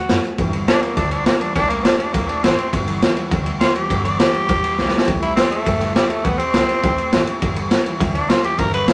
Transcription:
Already playing: tenor saxophone F#4
0.09 upright bass F#2, steel-string acoustic guitar F#3 A3 B3 F#4, snare, closed hi-hat
0.23 steel-string acoustic guitar A3 B3 F#4, closed hi-hat
0.38 upright bass G1, steel-string acoustic guitar G2 D3 E3 G3 B3 E4, kick, ride
0.52 steel-string acoustic guitar E3 G3 B3 E4, ride
0.67 steel-string acoustic guitar E3, tenor saxophone D4, snare, ride
0.81 steel-string acoustic guitar E3 G3 B3 E4, tenor saxophone A#3, muted upright bass stroke, snare, ride
0.95 upright bass D2, steel-string acoustic guitar G2 D3 E3 G3 B3 E4, tenor saxophone D4, kick, snare, ride
1.10 steel-string acoustic guitar E3 G3 B3 E4, tenor saxophone D4, ride
1.24 steel-string acoustic guitar E3 G3 B3 E4, tenor saxophone A#3, snare, ride
1.40 steel-string acoustic guitar E3 G3 B3 E4, tenor saxophone D4, muted upright bass stroke, ride
1.54 upright bass C2, steel-string acoustic guitar C3 E3 A3 E4 G4, tenor saxophone D4, kick, ride
1.69 steel-string acoustic guitar A3 E4 G4, tenor saxophone A#3, ride
1.83 steel-string acoustic guitar E3 A3 E4 G4, tenor saxophone D4, snare, ride
1.98 steel-string acoustic guitar A3 E4 G4, tenor saxophone D4, muted upright bass stroke, ride
2.13 upright bass B1, steel-string acoustic guitar C3 E3 A3 E4 G4, tenor saxophone A#3, kick, snare, ride
2.28 steel-string acoustic guitar A3 E4 G4, tenor saxophone D4, muted upright bass stroke, ride
2.43 upright bass A1, steel-string acoustic guitar E3 A3 E4 G4, tenor saxophone C4, snare, ride
2.58 steel-string acoustic guitar A3 E4 G4, ride
2.72 upright bass G1, steel-string acoustic guitar G2 D3 E3 G3 B3 E4, kick, ride
2.87 steel-string acoustic guitar E3 G3 B3 E4, ride
3.02 steel-string acoustic guitar E3 G3 B3 E4, snare, ride
3.16 steel-string acoustic guitar E3 G3 B3 E4, muted upright bass stroke, ride
3.31 upright bass D2, steel-string acoustic guitar G2 D3 E3 G3 B3 E4, kick, snare, ride
3.45 steel-string acoustic guitar E3 G3 B3 E4, ride
3.59 steel-string acoustic guitar E3 G3 B3 E4, tenor saxophone F4, snare, ride
3.75 steel-string acoustic guitar E3 G3 B3 E4, tenor saxophone G4, muted upright bass stroke, ride
3.89 upright bass G1, steel-string acoustic guitar G2 D3 E3 G3 B3 E4, kick, ride
4.04 steel-string acoustic guitar E3 G3 B3 E4, tenor saxophone D5, ride
4.18 steel-string acoustic guitar E3 G3 B3, tenor saxophone G4, snare, ride
4.33 steel-string acoustic guitar E3 G3 B3 E4, muted upright bass stroke, ride
4.48 upright bass A1, steel-string acoustic guitar G2 D3 E3 G3 B3 E4, kick, ride
4.61 steel-string acoustic guitar E3 G3 B3 E4, muted upright bass stroke, snare, ride
4.77 upright bass B1, steel-string acoustic guitar E3 G3 B3 E4, snare
4.88 steel-string acoustic guitar B3 E4, snare
4.92 steel-string acoustic guitar E3 G3, muted upright bass stroke
4.98 snare
5.06 upright bass C2, steel-string acoustic guitar C3 E3 A3 E4 G4, kick, ride
5.21 steel-string acoustic guitar A3 E4 G4, tenor saxophone E4, ride
5.36 steel-string acoustic guitar E3 A3 E4 G4, tenor saxophone C4, snare, ride
5.51 tenor saxophone A3, steel-string acoustic guitar A3 E4 G4, muted upright bass stroke, ride
5.65 upright bass G1, steel-string acoustic guitar C3 E3 A3 E4 G4, kick, ride
5.80 steel-string acoustic guitar A3 E4 G4, snare, ride
5.95 steel-string acoustic guitar E3 A3 E4 G4, tenor saxophone G3, snare, ride
6.10 tenor saxophone A3, steel-string acoustic guitar A3 E4 G4, muted upright bass stroke, ride
6.24 upright bass C2, steel-string acoustic guitar C3 E3 A3 E4 G4, tenor saxophone B3, kick, ride
6.38 steel-string acoustic guitar A3 E4 G4, tenor saxophone C4, muted upright bass stroke, ride
6.53 upright bass C2, steel-string acoustic guitar E3 A3 E4 G4, snare, ride
6.68 steel-string acoustic guitar A3 E4 G4, snare, ride
6.82 upright bass B1, steel-string acoustic guitar C3 E3 A3 E4 G4, kick, ride
6.97 steel-string acoustic guitar A3 E4 G4, muted upright bass stroke, ride
7.12 upright bass A1, steel-string acoustic guitar E3 A3 E4 G4, snare, ride
7.27 steel-string acoustic guitar A3 E4 G4, muted upright bass stroke, ride
7.42 upright bass G1, steel-string acoustic guitar G2 D3 E3 G3 B3 E4, kick, ride
7.56 steel-string acoustic guitar E3 G3 B3 E4, ride
7.70 steel-string acoustic guitar E3 G3 B3 E4, snare, ride
7.85 steel-string acoustic guitar E3 G3 B3 E4, muted upright bass stroke, ride
7.99 upright bass D2, steel-string acoustic guitar G2 D3 E3 G3 B3 E4, kick, snare, ride
8.14 steel-string acoustic guitar E3 G3 B3 E4, tenor saxophone D4, ride
8.27 steel-string acoustic guitar E3 G3 B3, tenor saxophone F4, snare, ride
8.43 steel-string acoustic guitar E3 G3 B3 E4, tenor saxophone G4, muted upright bass stroke, ride
8.57 upright bass G1, steel-string acoustic guitar G2 D3 E3 G3 B3 E4, tenor saxophone A#4, kick, ride
8.71 steel-string acoustic guitar E3 G3 B3 E4, tenor saxophone B4, ride
8.87 steel-string acoustic guitar E3 G3 B3 E4, snare, ride

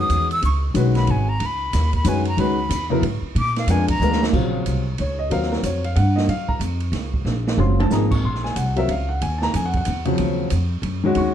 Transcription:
Already playing: grand piano D#3 G#3 C#4 F#4 B4
0.00 flute D#6
0.09 upright bass E2, hi-hat pedal, ride
0.31 flute E6, ride
0.42 upright bass C#2, flute C#6, ride
0.74 upright bass B1, grand piano D#3 G#3 C#4 F#4 B4, hi-hat pedal, ride
0.95 flute B5, snare, ride
1.07 upright bass G#1, flute G#5, ride
1.29 flute A#5
1.40 upright bass C#2, ride
1.46 flute B5
1.73 upright bass D#2, snare, hi-hat pedal, ride
1.93 flute B5, kick, ride
2.04 upright bass F#2, grand piano D#3 G#3 C#4 F#4 B4, hi-hat pedal, ride
2.09 flute G#5
2.25 flute A#5, ride
2.37 upright bass C#2, grand piano D#3 G#3 C#4 F#4 B4, flute B5, ride
2.69 upright bass E2, hi-hat pedal, ride
2.90 grand piano C#3 F#3 B3 E4 A#4
3.02 upright bass G#2, ride
3.22 muted upright bass stroke
3.35 upright bass A#2, flute D6, ride
3.56 flute F5, snare, ride
3.67 upright bass F2, grand piano G#3 B3 D4 F4 A#4, flute G#5, hi-hat pedal, ride
3.88 flute A#5, kick, ride
4.00 upright bass D2, grand piano G#3 B3 D4 F4 A#4, hi-hat pedal, mid tom
4.12 snare
4.23 snare
4.33 upright bass A#1, grand piano C#3 F#3 C4 F4, kick, crash
4.66 upright bass C2, hi-hat pedal, ride
4.98 upright bass C#2, grand piano C#5, ride
5.19 grand piano D#5
5.30 upright bass D#2, grand piano F#3 C4 F4 A#4 F5, ride
5.42 snare
5.52 grand piano A#4, snare
5.63 upright bass F2, grand piano C#5, hi-hat pedal, ride
5.84 grand piano F5, ride
5.96 upright bass G2, grand piano F#5, ride
6.16 grand piano D#5, snare
6.27 upright bass F#2, grand piano F5, ride
6.49 grand piano A#5, kick
6.59 upright bass F2, hi-hat pedal, ride
6.80 ride
6.92 upright bass C#2, snare, ride
7.14 kick
7.25 upright bass A#1, snare
7.47 snare
7.57 upright bass F#1, grand piano C#3 F#3 C4 F4 C6, high tom
7.80 grand piano A5, high tom
7.90 upright bass G#1, grand piano F3 A#3 D#4 G#4 A#5, snare, hi-hat pedal
8.11 grand piano C#6, kick, crash
8.24 upright bass A#1, grand piano C6
8.35 snare
8.44 grand piano G#5, snare
8.56 upright bass C2, grand piano F#5, hi-hat pedal, ride
8.76 grand piano F#3 C4 F4 A#4 E5, ride
8.88 upright bass C#2, grand piano F5, ride
9.09 grand piano F#5
9.21 upright bass D#2, grand piano G#5, ride
9.38 grand piano A5, snare
9.43 grand piano A#5
9.54 upright bass F2, grand piano G#5, hi-hat pedal, ride
9.66 grand piano F#5
9.73 grand piano F#5, kick, ride
9.85 upright bass E2, hi-hat pedal, ride
10.05 grand piano C#3 F3 F#3 C4, ride
10.18 upright bass D#2, ride
10.50 upright bass F2, hi-hat pedal, ride
10.82 upright bass F#2, ride
11.04 grand piano D#3 G#3 C#4 F#4
11.15 upright bass D#2, grand piano C#6, ride

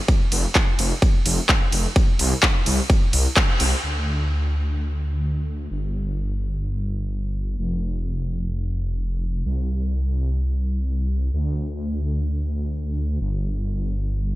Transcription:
0.08 kick, ride
0.32 detuned saw bass F1, open hi-hat, ride
0.55 kick, clap, ride
0.79 detuned saw bass F1, open hi-hat, ride
1.02 kick, ride
1.26 detuned saw bass F1, open hi-hat, ride
1.49 kick, clap, ride
1.72 detuned saw bass F1, open hi-hat, ride
1.96 kick, ride
2.19 detuned saw bass C2, open hi-hat, ride
2.43 kick, clap, ride
2.66 detuned saw bass C2, open hi-hat, ride
2.90 kick, ride
3.13 detuned saw bass C2, open hi-hat, ride
3.37 kick, clap, ride
3.60 detuned saw bass C2, open hi-hat, ride
3.83 detuned saw bass D2
5.71 detuned saw bass G1
7.58 detuned saw bass F1
9.46 detuned saw bass C2
11.33 detuned saw bass D2
13.21 detuned saw bass G1

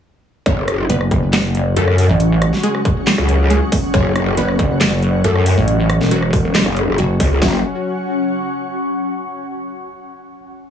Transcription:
0.46 wobble bass F#1, analog synth pad C#3 F#3 C#4, ambient pad C#4, synth pluck C#4 C#5, kick, closed hi-hat
0.58 ambient pad F#4
0.68 ambient pad F#5, cross-stick, closed hi-hat
0.90 wobble bass F#1, synth pluck B3 B4, closed hi-hat
1.01 cross-stick
1.11 wobble bass F#1, kick, closed hi-hat
1.31 ambient pad C#6, snare, clap, closed hi-hat
1.55 closed hi-hat
1.76 wobble bass F#2, synth pluck A3 A4, closed hi-hat
1.88 cross-stick
1.98 open hi-hat
2.09 wobble bass A1
2.20 closed hi-hat
2.42 cross-stick, closed hi-hat
2.53 snare
2.63 synth pluck G#3 G#4, closed hi-hat
2.75 cross-stick
2.85 kick, closed hi-hat
3.07 snare, clap, closed hi-hat
3.18 wobble bass C#2, cross-stick
3.29 closed hi-hat
3.50 synth pluck G#3 G#4, closed hi-hat
3.72 kick, open hi-hat
3.94 wobble bass F#1, synth pluck C#4 C#5, kick, closed hi-hat
4.16 cross-stick, closed hi-hat
4.37 wobble bass F#1, synth pluck B3 B4, closed hi-hat
4.48 cross-stick
4.59 wobble bass F#1, kick, closed hi-hat
4.81 snare, clap, closed hi-hat
5.03 closed hi-hat
5.24 wobble bass F#2, synth pluck A3 A4, closed hi-hat
5.36 cross-stick
5.46 open hi-hat
5.57 wobble bass A1
5.68 closed hi-hat
5.90 cross-stick, closed hi-hat
6.01 wobble bass E1, snare
6.11 synth pluck F#3 F#4, closed hi-hat
6.22 cross-stick
6.33 kick, open hi-hat
6.55 snare, clap, closed hi-hat
6.66 wobble bass F#1, cross-stick
6.76 closed hi-hat
6.88 wobble bass F#1
6.98 wobble bass F#1, synth pluck F#3 F#4, closed hi-hat
7.20 wobble bass C#2, kick, open hi-hat
7.42 wobble bass F#1, ambient pad C#4, synth pluck F#4, kick, snare
7.49 ambient pad F#4
7.55 ambient pad F#5
7.61 ambient pad C#6

